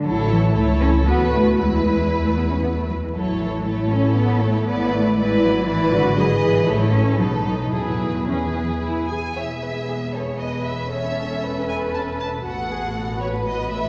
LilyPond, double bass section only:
\new Staff \with { instrumentName = "Double bass section" } { \clef bass \time 3/4 \key e \mixolydian \tempo 4 = 117 a,,4 cis,4 d,4 | e,2~ e,8 r8 | a,,2. | gis,,2.~ |
\key e \major gis,,4 a,,4 b,,4 | e,2~ e,8 r8 | e,,2.~ | e,,2. |
a,,2. | }